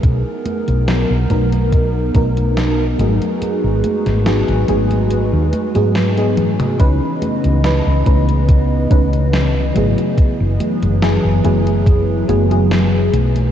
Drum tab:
HH |x-xxx-xxx-xxx-xx|x-xxxxxxx-xxxxxx|x-xxx-xxx-xxx-xx|x-xxx-xxx-xxx-xx|
SD |----o-------o---|---oo-------o---|----o-------o---|----o-------o---|
T1 |----------------|--------------o-|----------------|----------------|
T2 |----------------|---------------o|----------------|----------------|
CG |o-ooo-ooo-ooo-oo|o-ooo-ooo-ooo-oo|o-ooo-ooo-ooo-oo|o-ooo-ooo-ooo-oo|
BD |o-----o-o-o-----|----------------|o-----o-o-o-----|o-------o-------|